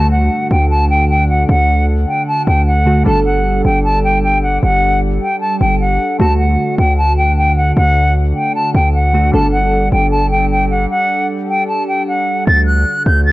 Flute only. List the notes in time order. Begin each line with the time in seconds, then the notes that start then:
Already playing: A5
0.12 F#5
0.51 G5
0.71 A5
0.90 G5
1.10 G5
1.29 F#5
1.49 F#5
2.08 G5
2.28 A5
2.47 G5
2.67 F#5
3.06 A5
3.25 F#5
3.65 G5
3.84 A5
4.04 G5
4.24 G5
4.43 F#5
4.63 F#5
5.21 G5
5.41 A5
5.61 G5
5.80 F#5
6.20 A5
6.39 F#5
6.78 G5
6.98 A5
7.18 G5
7.37 G5
7.57 F#5
7.76 F#5
8.35 G5
8.55 A5
8.75 G5
8.94 F#5
9.33 A5
9.53 F#5
9.92 G5
10.11 A5
10.31 G5
10.51 G5
10.70 F#5
10.90 F#5
11.49 G5
11.68 A5
11.88 G5
12.08 F#5
12.47 A6
12.67 F#6
13.06 G6
13.25 A6